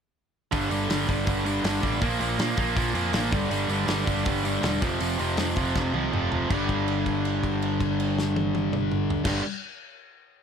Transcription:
0.52 picked electric bass G1, distorted electric guitar G2 D3 G3, kick, open hi-hat
0.71 picked electric bass G1, distorted electric guitar G2 D3 G3, open hi-hat
0.90 picked electric bass G1, distorted electric guitar G2 D3 G3, snare, open hi-hat
1.08 picked electric bass G1, distorted electric guitar G2 D3 G3, kick, open hi-hat
1.26 picked electric bass G1, distorted electric guitar G2 D3 G3, kick, open hi-hat
1.46 distorted electric guitar G2 D3 G3, open hi-hat
1.64 picked electric bass G1, distorted electric guitar G2 D3 G3, snare, open hi-hat
1.83 picked electric bass A1, distorted electric guitar G2 D3 G3, kick, open hi-hat
2.01 picked electric bass A#1, distorted electric guitar A#2 F3 A#3, kick, open hi-hat
2.20 picked electric bass A#1, distorted electric guitar A#2 F3 A#3, open hi-hat
2.39 picked electric bass A#2, distorted electric guitar A#2 F3 A#3, snare, open hi-hat
2.57 picked electric bass A#1, distorted electric guitar A#2 F3 A#3, kick, open hi-hat
2.75 picked electric bass A#1, distorted electric guitar A#2 F3 A#3, kick, open hi-hat
2.93 picked electric bass F2, distorted electric guitar A#2 F3 A#3, open hi-hat
3.13 picked electric bass A1, distorted electric guitar A#2 F3 A#3, snare, open hi-hat
3.32 picked electric bass G1, distorted electric guitar G2 D3 G3, kick, open hi-hat
3.49 picked electric bass G1, distorted electric guitar G2 D3 G3, open hi-hat
3.69 picked electric bass G1, distorted electric guitar G2 D3 G3, open hi-hat
3.87 picked electric bass G1, distorted electric guitar G2 D3 G3, snare, open hi-hat
4.07 picked electric bass G1, distorted electric guitar G2 D3 G3, kick, open hi-hat
4.26 picked electric bass G1, distorted electric guitar G2 D3 G3, kick, open hi-hat
4.45 distorted electric guitar G2 D3 G3, open hi-hat
4.63 picked electric bass E1, distorted electric guitar G2 D3 G3, snare, open hi-hat
4.82 picked electric bass F1, distorted electric guitar F2 C3 F3, kick, open hi-hat
5.00 picked electric bass F1, distorted electric guitar F2 C3 F3, open hi-hat
5.19 picked electric bass F1, distorted electric guitar F2 C3 F3, open hi-hat
5.37 picked electric bass F2, distorted electric guitar F2 C3 F3, snare, open hi-hat
5.56 picked electric bass F1, distorted electric guitar F2 C3 F3, kick, open hi-hat
5.75 picked electric bass F1, distorted electric guitar F2 C3 F3, kick, snare
5.94 picked electric bass C2, distorted electric guitar F2 C3 F3, high tom
6.12 picked electric bass F1, distorted electric guitar F2 C3 F3, mid tom
6.30 distorted electric guitar F2 C3 F3, floor tom
6.50 picked electric bass G1, distorted electric guitar G2 D3 G3, kick, crash
6.69 kick, crash
6.88 crash
7.06 kick, crash
7.25 crash
7.43 kick, crash
7.62 crash
7.80 kick, crash
8.00 crash
8.19 snare
8.36 high tom
8.55 high tom
8.73 mid tom
8.92 mid tom
9.10 floor tom
9.23 picked electric bass G1, distorted electric guitar G2 D3, kick, snare, crash
9.28 distorted electric guitar G3

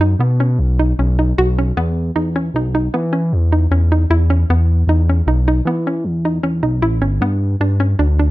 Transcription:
Already playing: analog synth bass F#2
0.01 synth arpeggio sound D#4
0.19 analog synth bass B2, synth arpeggio sound B3
0.40 synth arpeggio sound C#4
0.59 analog synth bass B1
0.79 synth arpeggio sound D#4
0.99 analog synth bass B1, synth arpeggio sound C#4
1.19 synth arpeggio sound D#4
1.38 analog synth bass B1, synth arpeggio sound F#4
1.58 synth arpeggio sound C#4
1.77 analog synth bass E2, synth arpeggio sound B3
2.15 analog synth bass E2, synth arpeggio sound D#4
2.36 synth arpeggio sound C#4
2.54 analog synth bass B1, synth arpeggio sound D#4
2.75 synth arpeggio sound D#4
2.94 analog synth bass E3, synth arpeggio sound B3
3.13 synth arpeggio sound C#4
3.33 analog synth bass E2
3.52 synth arpeggio sound D#4
3.71 analog synth bass E2, synth arpeggio sound C#4
3.92 synth arpeggio sound D#4
4.10 analog synth bass E2, synth arpeggio sound E4
4.30 synth arpeggio sound C#4
4.49 analog synth bass E2, synth arpeggio sound B3
4.87 analog synth bass E2, synth arpeggio sound D#4
5.09 synth arpeggio sound C#4
5.26 analog synth bass B1, synth arpeggio sound D#4
5.48 synth arpeggio sound D#4
5.65 analog synth bass E3, synth arpeggio sound B3
5.87 synth arpeggio sound C#4
6.04 analog synth bass E2
6.25 synth arpeggio sound D#4
6.43 analog synth bass E2, synth arpeggio sound C#4
6.63 analog synth bass B1, synth arpeggio sound D#4
6.82 analog synth bass A1, synth arpeggio sound E4
7.01 analog synth bass G1, synth arpeggio sound C#4
7.21 analog synth bass G2, synth arpeggio sound B3
7.60 analog synth bass G2, synth arpeggio sound D4
7.80 synth arpeggio sound C#4
7.99 analog synth bass D2, synth arpeggio sound D4
8.19 synth arpeggio sound D4

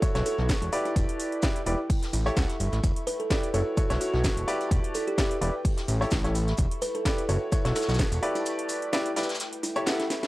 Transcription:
Already playing: analog synth pad E4 F#4 B4 C#6
0.01 grand piano E4 F#4 A4 C#5, analog synth pad F#5, kick, closed hi-hat, shaker
0.08 analog synth pad A5
0.15 analog synth bass B1, grand piano E4 F#4 A4 C#5, snare, closed hi-hat
0.26 kalimba A4, open hi-hat, shaker
0.38 analog synth bass B1, snare
0.49 kick, snare, closed hi-hat, shaker
0.62 analog synth bass E1, closed hi-hat
0.72 analog synth pad E4, grand piano E4 G4 B4 D5, open hi-hat, shaker
0.85 kalimba E4, analog synth pad B4, closed hi-hat
0.96 analog synth bass E1, kick, closed hi-hat, shaker
1.09 analog synth pad G5, closed hi-hat
1.20 open hi-hat, shaker
1.32 closed hi-hat
1.42 grand piano E4 G4 B4 D5, kalimba E4, kick, snare, closed hi-hat, shaker
1.56 closed hi-hat
1.66 analog synth bass E1, kalimba E4, grand piano E4 G4 B4 D5, open hi-hat, shaker
1.89 analog synth pad A4, kick, closed hi-hat, open hi-hat
2.01 analog synth pad E5 C#6, snare, closed hi-hat
2.13 analog synth bass A1, kalimba E4, open hi-hat, shaker
2.20 analog synth pad B5
2.26 grand piano E4 G4 A4 C#5, closed hi-hat
2.37 analog synth bass C#2, grand piano E4 G4 A4 F#5, kick, snare, closed hi-hat, shaker
2.50 snare, closed hi-hat
2.60 analog synth bass G1, open hi-hat, shaker
2.72 analog synth bass A1, snare, closed hi-hat
2.83 analog synth bass E1, analog synth pad E4, kick, closed hi-hat, shaker
2.96 analog synth pad B4, closed hi-hat
3.07 kalimba B4, analog synth pad G5, open hi-hat, shaker
3.20 kalimba A4, closed hi-hat
3.30 grand piano E4 G4 B4 D5, kalimba A4, kick, snare, closed hi-hat, shaker
3.43 closed hi-hat
3.54 analog synth bass F#1, grand piano E4 F#4 A4 C#5, analog synth pad F#4, kalimba A4, open hi-hat, shaker
3.69 analog synth pad C#6
3.77 grand piano E4 F#4 A4 C#5, kick, closed hi-hat, shaker
3.90 analog synth bass B1, grand piano E4 F#4 A4 C#5, snare, closed hi-hat
3.96 analog synth pad F#5 A5
4.01 kalimba F#4, open hi-hat, shaker
4.14 analog synth bass B1, kalimba F#4, snare
4.24 kick, snare, closed hi-hat, shaker
4.37 analog synth bass E1, closed hi-hat
4.48 grand piano E4 G4 B4 D5, analog synth pad E4, open hi-hat, shaker
4.61 closed hi-hat
4.71 analog synth bass E1, kick, closed hi-hat, shaker
4.81 analog synth pad B4, closed hi-hat
4.94 kalimba A4, open hi-hat, shaker
5.01 analog synth pad G5
5.07 kalimba G4, closed hi-hat
5.18 grand piano E4 G4 B4 D5, kalimba G4, kick, snare, closed hi-hat, shaker
5.31 closed hi-hat
5.41 analog synth bass E1, grand piano E4 G4 B4 D5, open hi-hat, shaker
5.65 analog synth pad A4, kick, closed hi-hat, open hi-hat
5.77 analog synth pad E5, snare, closed hi-hat
5.82 analog synth pad B5
5.88 analog synth bass A1, open hi-hat, shaker
6.01 grand piano E4 G4 A4 C#5, closed hi-hat
6.06 analog synth pad C#6
6.11 analog synth bass A1, kick, snare, closed hi-hat, shaker
6.24 grand piano E4 G4 A4 C#5, snare, closed hi-hat
6.35 open hi-hat, shaker
6.47 snare, closed hi-hat
6.57 analog synth bass E1, analog synth pad E4, kick, closed hi-hat, shaker
6.71 analog synth pad B4, closed hi-hat
6.82 kalimba B4, analog synth pad G5, open hi-hat, shaker
6.95 kalimba A4, closed hi-hat
7.05 grand piano E4 G4 B4 D5, kalimba A4, kick, snare, closed hi-hat, shaker
7.18 closed hi-hat
7.28 analog synth bass F#1, grand piano E4 F#4 A4 C#5, analog synth pad F#4, kalimba A4, open hi-hat, shaker
7.52 grand piano E4 F#4 A4 C#5, analog synth pad C#6, kick, closed hi-hat, shaker
7.65 analog synth bass B1, grand piano E4 F#4 A4 C#5, snare, closed hi-hat
7.70 analog synth pad F#5 A5
7.75 kalimba A4, snare, open hi-hat, shaker
7.82 snare, shaker
7.88 analog synth bass B1, snare, shaker
7.94 snare, shaker
7.99 kick, snare, closed hi-hat, shaker
8.12 analog synth bass E1, closed hi-hat, shaker
8.22 analog synth pad E4, grand piano E4 G4 B4 D5, open hi-hat
8.33 kalimba E4, analog synth pad B4, closed hi-hat, shaker
8.46 closed hi-hat, shaker
8.59 closed hi-hat
8.69 open hi-hat, shaker
8.76 analog synth pad G5
8.82 closed hi-hat
8.93 kalimba E4, grand piano E4 G4 B4 D5, snare, closed hi-hat, shaker
9.06 closed hi-hat
9.16 kalimba E4, grand piano E4 G4 B4 D5, snare, open hi-hat, shaker
9.23 snare, shaker
9.29 snare, closed hi-hat, shaker
9.34 snare, shaker
9.40 analog synth pad A4, snare, closed hi-hat, shaker
9.51 analog synth pad E5 B5, closed hi-hat
9.63 kalimba E4, open hi-hat, shaker
9.75 grand piano E4 G4 A4 C#5, closed hi-hat
9.82 analog synth pad C#6, snare
9.87 grand piano E4 G4 A4 F#5, snare, closed hi-hat, shaker
9.99 snare, closed hi-hat
10.10 snare, open hi-hat, shaker
10.23 snare, closed hi-hat

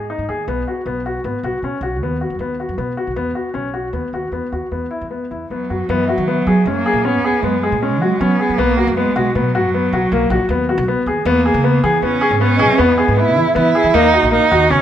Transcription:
Already playing: upright bass G#2
0.10 grand piano D#4
0.18 upright bass G#2
0.29 upright bass D#2, grand piano G#4
0.48 upright bass B1, grand piano B3
0.68 grand piano F#4
0.86 upright bass B1, grand piano B3
1.06 grand piano F#4
1.24 upright bass G#1, grand piano B3
1.43 upright bass B1, grand piano F#4
1.62 upright bass B2, grand piano C#4
1.81 upright bass B1, grand piano F#4
2.00 upright bass D#2, grand piano B3
2.21 grand piano F#4
2.30 upright bass F#2
2.39 upright bass D#2, grand piano B3
2.60 grand piano F#4
2.69 upright bass F#2
2.78 upright bass B2, grand piano B3
2.97 grand piano F#4
3.07 upright bass B1
3.16 upright bass E2, grand piano B3
3.35 grand piano F#4
3.54 upright bass B1, grand piano C#4
3.74 grand piano F#4
3.93 upright bass D#2, grand piano B3
4.13 upright bass D#2, grand piano F#4
4.32 upright bass E2, grand piano B3
4.52 upright bass D#2, grand piano F#4
4.71 upright bass E2, grand piano B3
4.91 grand piano E4
5.01 upright bass E2
5.11 grand piano B3
5.31 upright bass E2, grand piano E4
5.50 upright bass E2, cello F#3, grand piano B3
5.70 upright bass F#2, grand piano F#4
5.89 upright bass F#2, cello E3, grand piano B3
6.08 cello F#3, grand piano F#4, celesta E5
6.18 upright bass D#3
6.28 grand piano B3
6.47 upright bass F#3, grand piano G#4
6.65 upright bass F#2, cello G#3, grand piano C#4
6.76 cello A#3
6.86 grand piano G#4
6.93 upright bass A#2
7.04 cello B3, grand piano C#4
7.23 upright bass C#2, grand piano G#4
7.42 upright bass F#2, cello G#3, grand piano B3
7.63 grand piano G#4
7.72 upright bass A#2
7.81 cello G#3, grand piano C#4
8.01 upright bass F#3, grand piano F#4
8.20 upright bass F#3, cello B3, grand piano C#4
8.40 grand piano G#4
8.50 upright bass F#3
8.58 upright bass B1, cello A#3, grand piano B3
8.77 grand piano F#4
8.87 upright bass F#2
8.97 cello G#3, grand piano B3
9.16 upright bass B1, grand piano F#4
9.35 upright bass B2, cello F#3, grand piano B3
9.55 grand piano F#4
9.63 upright bass F#2
9.74 grand piano B3
9.93 upright bass B1, grand piano F#4
10.12 upright bass B1, grand piano A#3
10.30 upright bass A#1, grand piano F#4
10.49 upright bass D#2, grand piano B3
10.69 grand piano F#4
10.78 upright bass B1
10.88 grand piano B3
11.06 upright bass D#2, grand piano G#4
11.25 upright bass E2, cello A#3, grand piano B3
11.46 grand piano G#4
11.54 upright bass C#3
11.64 grand piano B3
11.84 upright bass E3, cello B3, grand piano G#4
12.02 upright bass E2, grand piano B3, cello C#4
12.21 grand piano G#4
12.31 upright bass G#2
12.40 grand piano B3, cello C#4, celesta B4
12.57 upright bass B1, grand piano G#4, celesta D#5
12.71 celesta E5
12.78 upright bass E2, grand piano B3, cello B3
12.98 grand piano G#4
13.08 upright bass G#2
13.17 grand piano B3, cello E4
13.36 upright bass E3, grand piano E4
13.55 upright bass E3, grand piano B3, cello E4
13.75 grand piano G#4
13.84 upright bass E3
13.94 upright bass D#2, grand piano A#3, cello D#4
14.13 grand piano F#4
14.23 upright bass A#1
14.32 grand piano A#3, cello D#4
14.51 upright bass D#2, grand piano F#4
14.70 upright bass D#3, grand piano C#4, cello C#4

